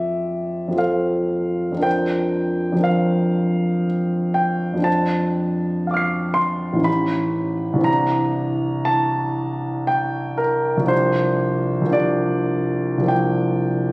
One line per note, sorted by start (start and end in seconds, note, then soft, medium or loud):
0.00 0.66 F2 soft
0.00 0.69 F3 soft
0.00 0.72 F4 soft
0.00 0.75 A4 soft
0.00 0.76 C5 soft
0.00 1.88 D5 medium
0.00 0.80 E5 medium
0.68 1.70 F2 soft
0.68 1.73 F3 soft
0.73 1.78 F4 soft
0.73 1.80 A4 soft
0.78 1.81 C5 soft
0.78 1.84 F5 soft
1.72 2.71 F2 soft
1.72 2.74 F3 soft
1.77 2.77 D4 soft
1.77 2.79 A#4 soft
1.83 2.81 C5 soft
1.83 2.85 G5 medium
2.72 4.72 F2 soft
2.72 4.74 F3 soft
2.78 4.77 D4 soft
2.78 4.80 A#4 soft
2.83 4.81 C5 soft
2.83 3.86 F5 medium
4.34 4.86 G5 medium
4.74 6.76 F2 soft
4.74 6.77 F3 soft
4.79 6.79 D4 soft
4.79 6.80 F4 soft
4.84 6.81 C5 soft
4.84 6.36 A5 medium
5.87 6.83 F5 soft
5.87 6.85 D6 soft
5.94 6.86 F6 soft
5.94 6.87 C7 soft
6.34 6.85 C6 medium
6.73 7.77 A1 soft
6.73 7.75 E3 soft
6.79 7.80 C#4 soft
6.79 7.81 D#4 soft
6.84 7.82 G4 soft
6.84 7.86 B5 medium
7.73 10.76 C2 soft
7.73 10.82 E3 soft
7.78 10.83 C4 soft
7.78 10.84 D4 soft
7.84 10.85 G4 soft
7.84 8.87 A#5 medium
8.85 9.88 A5 medium
9.87 10.39 G5 medium
10.38 10.90 A#4 medium
10.77 11.80 C2 soft
10.77 11.83 F3 soft
10.82 11.85 A#3 soft
10.82 11.88 D4 soft
10.88 11.91 G4 soft
10.88 11.94 C5 medium
11.81 12.96 C2 soft
11.81 12.99 F3 soft
11.86 13.01 A#3 soft
11.86 13.04 D4 soft
11.93 13.07 G4 soft
11.93 13.11 D5 medium
12.98 13.92 C2 soft
12.98 13.92 F3 soft
13.03 13.92 A#3 soft
13.03 13.92 D4 soft
13.08 13.92 G4 soft
13.08 13.92 G5 medium